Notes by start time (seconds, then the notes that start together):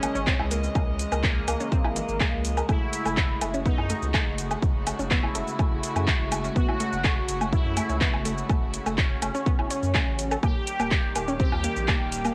Already playing: C#3 E3 G#3 C#4 D#5
0.03 A#3 A#4, closed hi-hat, low woodblock, shaker
0.15 G#1 C#4 C#5, shaker
0.27 C4 C5, kick, clap, shaker
0.39 C#2 E4 E5, low woodblock
0.51 A#3 A#4, closed hi-hat, shaker
0.64 shaker
0.75 C#2 A#3 A#4, kick, low woodblock, shaker
1.00 closed hi-hat, shaker
1.12 C#2 A#3 A#4, low woodblock, shaker
1.24 A#3, kick, clap, shaker
1.48 C#2 A#3 A#4, closed hi-hat, low woodblock, shaker
1.60 C#4 C#5, shaker
1.72 C4 C5, kick, shaker
1.85 G#1 E4 E5, low woodblock
1.96 E3 E4, closed hi-hat, shaker
2.09 G#1, shaker
2.20 G#3 G#4, kick, clap, low woodblock, shaker
2.33 C#2
2.45 closed hi-hat, shaker
2.57 A#4 A#5, low woodblock, shaker
2.69 F#1 C#3 A3 E4 F#4 A4, kick, low woodblock, shaker
2.93 closed hi-hat, shaker
3.06 F#1 A3 A4, low woodblock, shaker
3.17 kick, clap, shaker
3.41 F#1 A3 A4, closed hi-hat, low woodblock, shaker
3.54 C#4 C#5, shaker
3.66 B3 D#4 B4, kick, shaker
3.78 F#2 E4 E5, low woodblock
3.90 A3 A4, closed hi-hat, shaker
4.02 C#2, shaker
4.14 A3 A4, kick, clap, low woodblock, shaker
4.26 F#1
4.38 closed hi-hat, shaker
4.51 A3 A4, low woodblock, shaker
4.62 F#1, kick, shaker
4.87 A3 A4, closed hi-hat, low woodblock, shaker
4.99 F#1 C#4 C#5, shaker
5.11 B3 E4 B4, kick, clap, shaker
5.23 E4 E5, low woodblock
5.35 F#1 A3 A4, closed hi-hat, shaker
5.48 shaker
5.59 A3 A4, kick, low woodblock, shaker
5.72 F#1
5.83 closed hi-hat, shaker
5.96 F#2 A3 A4, low woodblock, shaker
6.08 kick, clap, shaker
6.20 F#1
6.32 A3 A4, closed hi-hat, low woodblock, shaker
6.44 C#4 C#5, shaker
6.56 F#1 B3 F#4 B4, kick, shaker
6.68 E4 E5, low woodblock
6.80 A3 A4, closed hi-hat, shaker
6.93 F#1, shaker
7.04 A3 A4, kick, clap, low woodblock, shaker
7.29 F#1, closed hi-hat, shaker
7.41 A3 A4, low woodblock, shaker
7.53 E4, kick, shaker
7.65 F#2
7.77 A3 A4, closed hi-hat, low woodblock, shaker
7.89 C#2 C#4 C#5, shaker
8.01 B3 B4, kick, clap, shaker
8.14 F#1 E4 E5, low woodblock
8.25 A3 A4, closed hi-hat, shaker
8.38 shaker
8.50 F#1 A3 A4, kick, low woodblock, shaker
8.74 closed hi-hat, shaker
8.86 F#1 A3 A4, low woodblock, shaker
8.98 C#4, kick, clap, shaker
9.22 F#1 A3 A4, closed hi-hat, low woodblock, shaker
9.35 C#4 C#5, shaker
9.46 B3 B4, kick, shaker
9.59 F#1 E4 E5, low woodblock
9.70 C#5 C#6, closed hi-hat, shaker
9.83 F#2, shaker
9.95 A3 A4, kick, clap, low woodblock, shaker
10.07 A1
10.19 closed hi-hat, shaker
10.31 A4 A5, low woodblock, shaker
10.43 D#1 D#3 G3 A#3 G4 A#4, kick, low woodblock, shaker
10.67 closed hi-hat, shaker
10.80 D#1 A#3 A#4, low woodblock, shaker
10.91 kick, clap, shaker
11.16 D#1 A#3 A#4, closed hi-hat, low woodblock, shaker
11.28 C#4 C#5, shaker
11.40 C4 G4 C5, kick, shaker
11.52 D#2 F4 F5, low woodblock
11.64 A#3 A#4, closed hi-hat, shaker
11.76 A#1, shaker
11.88 A#3 A#4, kick, clap, low woodblock, shaker
12.01 D#1
12.12 closed hi-hat, shaker
12.25 A#3 A#4, low woodblock, shaker